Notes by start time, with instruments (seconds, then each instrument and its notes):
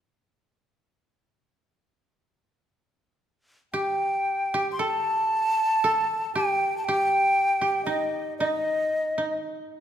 3.74 koto G4, flute G5
4.54 koto G4
4.72 flute C6
4.79 koto A4, flute A5
5.84 koto A4
6.35 koto G4, flute G5
6.78 flute A5
6.84 koto G4, flute G5
7.61 koto G4
7.85 koto D#4, flute D#5
8.39 koto D#4, flute D#5
9.18 koto D#4